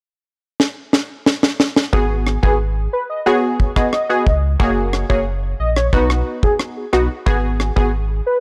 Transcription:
0.60 snare
0.93 snare
1.26 snare
1.43 snare
1.60 snare
1.76 snare
1.93 sub bass G#1, synth stab B3 F#4 G#4, soft synth lead G#4, kick
2.27 cross-stick
2.43 sub bass G#1, synth stab B3 F#4 G#4, soft synth lead G#4, kick
2.93 soft synth lead B4
3.10 soft synth lead D#5
3.26 synth stab B3 F#4 G#4, soft synth lead C#5
3.60 kick
3.76 synth stab B3 F#4 G#4, soft synth lead D#5, kick, cross-stick
3.93 soft synth lead D#5, cross-stick
4.10 synth stab B3 F#4 G#4
4.27 sub bass C#2, kick
4.60 sub bass F#1, synth stab A#3 F#4 G#4, soft synth lead C#5, kick
4.93 cross-stick
5.10 sub bass F#1, synth stab A#3 F#4 G#4, soft synth lead C#5, kick
5.60 sub bass A#1, soft synth lead D#5
5.76 soft synth lead C#5, cross-stick
5.93 sub bass B1, synth stab B3 D#4 F#4, soft synth lead B4, kick
6.10 cross-stick
6.43 soft synth lead G#4, kick
6.60 cross-stick
6.93 sub bass B1, synth stab B3 D#4 F#4, soft synth lead F#4, cross-stick
7.26 sub bass G#1, synth stab B3 F#4 G#4, soft synth lead G#4, kick
7.60 cross-stick
7.76 sub bass G#1, synth stab B3 F#4 G#4, soft synth lead G#4, kick
8.26 soft synth lead B4

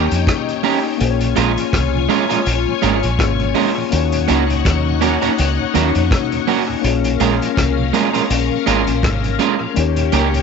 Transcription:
Already playing: tine electric piano A#3 C#4 D#4 G4 C#5, string machine D#4 C#5 G5
0.11 fingered electric bass F2, closed hi-hat
0.27 kick, cross-stick, closed hi-hat
0.48 closed hi-hat
0.63 clean electric guitar A#3 C#4 G4 A#4, open hi-hat
0.98 fingered electric bass A#1, tine electric piano A#3 C#4 F4, string machine F4 C#5 G#5, closed hi-hat
1.02 tine electric piano G#4 C5
1.10 tine electric piano C#5
1.20 tonewheel organ A#2 F3, closed hi-hat
1.36 fingered electric bass A#1, clean electric guitar G#3 C#4 F4 A#4, tonewheel organ G#3 A#3 C#4, closed hi-hat
1.57 tonewheel organ A#2 F3, closed hi-hat
1.73 fingered electric bass C2, kick, cross-stick, closed hi-hat
1.95 tonewheel organ A#2 F3
2.09 clean electric guitar G#3 C#4 F4 A#4, tonewheel organ G#3 A#3 C#4, closed hi-hat
2.29 tonewheel organ A#2 F3, clean electric guitar G#3 C#4 F4 A#4, closed hi-hat
2.46 fingered electric bass A#1, closed hi-hat
2.68 tonewheel organ A#2 F3
2.82 fingered electric bass G#1, clean electric guitar G#3 C#4 F4 A#4, tonewheel organ G#3 A#3 C#4, closed hi-hat
3.03 fingered electric bass A#1, tonewheel organ A#2 F3, closed hi-hat
3.18 fingered electric bass G#1, tine electric piano A#3 C#4 F4 G#4 C#5, kick, cross-stick, closed hi-hat
3.39 tonewheel organ A#2 F3, closed hi-hat
3.55 clean electric guitar G#3 C#4 F4 A#4, tonewheel organ G#3 A#3 C#4, open hi-hat
3.77 tonewheel organ A#2 F3
3.90 fingered electric bass D#2, tine electric piano A#3 C#4 D#4, string machine D#4 C#5 F#5, closed hi-hat
3.94 tine electric piano F#4 C#5
4.12 tonewheel organ D#2 A#2, closed hi-hat
4.28 fingered electric bass C#2, tonewheel organ F#3 C#4 D#4, clean electric guitar A#3 C#4 F#4 A#4, closed hi-hat
4.50 tonewheel organ D#2 A#2, closed hi-hat
4.65 fingered electric bass D#2, kick, cross-stick, closed hi-hat
4.87 tonewheel organ D#2 A#2
5.01 tonewheel organ F#3 C#4 D#4, clean electric guitar A#3 C#4 F#4 A#4, closed hi-hat
5.22 tonewheel organ D#2 A#2, clean electric guitar A#3 C#4 F#4 A#4, closed hi-hat
5.38 fingered electric bass C#2, closed hi-hat
5.59 tonewheel organ D#2 A#2
5.74 fingered electric bass D#2, tonewheel organ F#3 C#4 D#4, tine electric piano A#3 C#4 D#4 F#4 C#5, clean electric guitar A#3 C#4 F#4 A#4, closed hi-hat
5.95 tonewheel organ D#2 A#2, fingered electric bass F2, closed hi-hat
6.11 kick, cross-stick, closed hi-hat
6.32 tonewheel organ D#2 A#2, closed hi-hat
6.47 tonewheel organ F#3 C#4 D#4, clean electric guitar A#3 C#4 F#4 A#4, open hi-hat
6.68 tonewheel organ D#2 A#2
6.81 fingered electric bass A#1, tine electric piano A#3 C#4 F4, string machine C#4 A#4 F5, closed hi-hat
6.86 tine electric piano G#4 C#5
7.04 tonewheel organ A#2 F3, closed hi-hat
7.20 fingered electric bass A#1, clean electric guitar G#3 C#4 F4 A#4, tonewheel organ G#3 A#3 C#4, closed hi-hat
7.42 tonewheel organ A#2 F3, closed hi-hat
7.57 fingered electric bass C2, kick, cross-stick, closed hi-hat
7.78 tonewheel organ A#2 F3
7.93 clean electric guitar G#3 C#4 F4 A#4, tonewheel organ G#3 A#3 C#4, closed hi-hat
8.13 tonewheel organ A#2 F3, clean electric guitar G#3 C#4 F4 A#4, closed hi-hat
8.30 fingered electric bass A#1, closed hi-hat
8.51 tonewheel organ A#2 F3
8.66 fingered electric bass G#1, clean electric guitar G#3 C#4 F4 A#4, tonewheel organ G#3 A#3 C#4, closed hi-hat
8.87 fingered electric bass A#1, tonewheel organ A#2 F3, closed hi-hat
9.03 fingered electric bass G#1, kick, cross-stick, closed hi-hat
9.24 tonewheel organ A#2 F3, closed hi-hat
9.39 clean electric guitar G#3 C#4 F4 A#4, tonewheel organ G#3 A#3 C#4, closed hi-hat
9.60 tonewheel organ A#2 F3
9.74 fingered electric bass D#2, tine electric piano A#3 C#4 D#4, string machine A#3 G4 C#5, closed hi-hat
9.79 tine electric piano G4 C#5
9.96 tonewheel organ D#2 A#2, closed hi-hat
10.12 fingered electric bass C#2, tonewheel organ G3 C#4 D#4, clean electric guitar A#3 C#4 G4 A#4, closed hi-hat
10.34 tonewheel organ D#2 A#2, closed hi-hat

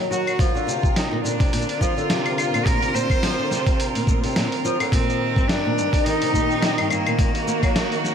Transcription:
Already playing: string quartet A#2 D#3 F#4 A#4
0.11 nylon-string guitar F#3, cello F#4, shaker
0.27 claves, shaker
0.39 string quartet D3, nylon-string guitar F3, cello F4, kick, open hi-hat, shaker
0.55 nylon-string guitar D3, shaker
0.67 nylon-string guitar C3, string quartet C4, shaker
0.83 kick, shaker
0.88 string quartet F4
0.96 cello D#4, snare, open hi-hat, shaker
1.11 nylon-string guitar A#2
1.24 nylon-string guitar A#2, cello D4, shaker
1.40 nylon-string guitar C3, kick, open hi-hat, shaker
1.47 shaker
1.52 nylon-string guitar A#2, open hi-hat, shaker
1.62 shaker
1.69 open hi-hat
1.81 nylon-string guitar F3, cello F4, kick, shaker
1.97 nylon-string guitar D3, shaker
2.09 nylon-string guitar C3, snare, open hi-hat, shaker
2.26 open hi-hat, claves
2.38 cello F4, claves, shaker
2.54 nylon-string guitar A#2, claves, shaker
2.66 nylon-string guitar A#2, cello A#4, kick, open hi-hat, shaker
2.82 nylon-string guitar C3, open hi-hat, shaker
2.94 nylon-string guitar A#2, cello C5, shaker
3.10 kick, claves, shaker
3.23 nylon-string guitar F3, snare, open hi-hat, shaker
3.39 nylon-string guitar D3
3.51 nylon-string guitar C3, snare, shaker
3.67 kick, open hi-hat, shaker
3.80 open hi-hat, shaker
3.95 nylon-string guitar A#2, open hi-hat, shaker
4.07 nylon-string guitar A#2, kick, shaker
4.24 nylon-string guitar C3, open hi-hat, shaker
4.26 shaker
4.32 shaker
4.34 nylon-string guitar A#2, snare, open hi-hat, shaker
4.37 shaker
4.52 open hi-hat
4.65 nylon-string guitar F3, shaker
4.80 nylon-string guitar D3, open hi-hat, claves, shaker
4.92 nylon-string guitar A#2, string quartet D#3, cello C4, kick, open hi-hat, shaker
5.09 shaker
5.36 nylon-string guitar G2, kick, shaker
5.48 nylon-string guitar G2, cello D4, snare, open hi-hat, shaker
5.65 nylon-string guitar A#2
5.72 string quartet G4
5.78 nylon-string guitar G2, shaker
5.93 kick, open hi-hat, shaker
6.04 nylon-string guitar D#3, cello D#4, open hi-hat, shaker
6.22 nylon-string guitar C3, open hi-hat, shaker
6.34 nylon-string guitar A#2, kick, shaker
6.50 shaker
6.62 snare, open hi-hat, shaker
6.78 nylon-string guitar G2, open hi-hat, claves
6.89 nylon-string guitar G2, cello A#3, claves, shaker
7.07 nylon-string guitar A#2, claves, shaker
7.19 nylon-string guitar A#2, kick, open hi-hat, shaker
7.31 string quartet F#4
7.35 string quartet A#3, open hi-hat, shaker
7.47 nylon-string guitar A#3, shaker
7.63 nylon-string guitar F#3, kick, open hi-hat, claves, shaker
7.76 nylon-string guitar D#3, snare, open hi-hat, shaker
7.92 open hi-hat, shaker
8.04 snare, shaker

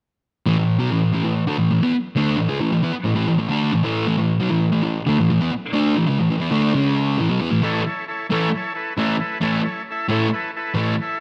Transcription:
0.46 distorted electric guitar A2 E3
0.58 distorted electric guitar A2 E3
0.79 distorted electric guitar B2 F#3
0.92 distorted electric guitar A2 E3
1.13 distorted electric guitar A2 E3
1.24 distorted electric guitar A2 E3
1.47 distorted electric guitar D3 A3
1.58 distorted electric guitar A2 E3
1.71 distorted electric guitar A2 E3
1.81 distorted electric guitar E3 B3
1.94 muted distorted electric guitar stroke
2.16 distorted electric guitar D3 A3 D4
2.37 distorted electric guitar A2 E3
2.49 distorted electric guitar C#3 G#3
2.60 distorted electric guitar A2 E3
2.71 distorted electric guitar A2 E3
2.83 distorted electric guitar E3 B3
2.93 muted distorted electric guitar stroke
3.04 distorted electric guitar A2 E3
3.15 distorted electric guitar A2 E3
3.26 distorted electric guitar A2 E3
3.38 distorted electric guitar A2 E3
3.48 distorted electric guitar D3 A3 D4
3.73 distorted electric guitar A2 E3
3.83 distorted electric guitar A2 E3 A3
4.07 distorted electric guitar A2 E3
4.17 distorted electric guitar A2 E3
4.40 distorted electric guitar B2 F#3
4.50 distorted electric guitar A2 E3
4.72 distorted electric guitar A2 E3
4.83 distorted electric guitar A2 E3
5.07 distorted electric guitar D3 A3
5.19 distorted electric guitar A2 E3
5.30 distorted electric guitar A2 E3
5.41 distorted electric guitar E3 B3
5.53 muted distorted electric guitar stroke
5.73 distorted electric guitar D3 A3 D4
5.96 distorted electric guitar A2 E3
6.06 distorted electric guitar C#3 G#3
6.19 distorted electric guitar A2 E3
6.30 distorted electric guitar A2 E3
6.40 distorted electric guitar E3 B3
6.51 distorted electric guitar D3 A3 D4
6.74 distorted electric guitar C#3 G#3 C#4
7.18 distorted electric guitar A2 E3
7.29 distorted electric guitar B2 F#3
7.40 distorted electric guitar E3 B3
7.51 distorted electric guitar A2 E3
7.62 distorted electric guitar A2 E3 A3, transistor combo organ E4 A4 C#5
7.86 transistor combo organ E4 A4 C#5
8.08 transistor combo organ E4 A4 C#5
8.30 distorted electric guitar A2 E3 A3, transistor combo organ E4 A4 C#5
8.55 transistor combo organ E4 A4 C#5
8.74 transistor combo organ E4 A4 B4
8.98 distorted electric guitar A2 E3 A3, transistor combo organ E4 A4 E5
9.20 transistor combo organ E4 A4 B4
9.41 distorted electric guitar A2 E3 A3, transistor combo organ E4 A4 C#5
9.63 transistor combo organ E4 A4 C#5
9.90 transistor combo organ E4 A4 E5
10.08 distorted electric guitar A2 E3 A3, transistor combo organ E4 A4 C#5
10.33 transistor combo organ E4 A4 B4
10.56 transistor combo organ E4 A4 B4
10.74 distorted electric guitar A2 E3 A3
10.80 transistor combo organ E4 A4 C#5
11.02 transistor combo organ E4 A4 E5

